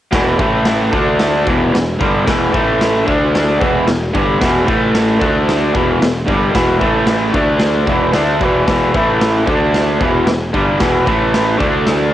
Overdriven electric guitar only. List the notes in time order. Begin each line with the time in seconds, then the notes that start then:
0.11 E2 B2 E3
0.38 A2 E3 A3
0.92 D3 A3 D4
1.46 E2 B2 E3
1.73 E2 B2
1.99 G2 D3 G3
2.25 E2 B2 E3
2.53 A2 E3 A3
3.05 D3 A3 D4
3.58 E2 B2 E3
3.87 E2 B2
4.14 G2 D3 G3
4.39 E2 B2 E3
4.65 A2 E3 A3
5.19 D3 A3 D4
5.73 E2 B2 E3
6.01 E2 B2
6.27 G2 D3 G3
6.53 E2 B2 E3
6.79 A2 E3 A3
7.33 D3 A3 D4
7.86 E2 B2 E3
8.12 D3 A3 D4
8.40 E2 B2 E3
8.67 E2 B2 E3
8.94 A2 E3 A3
9.46 D3 A3 D4
9.99 E2 B2 E3
10.26 E2 B2
10.53 G2 D3 G3
10.79 E2 B2 E3
11.05 A2 E3 A3
11.58 D3 A3 D4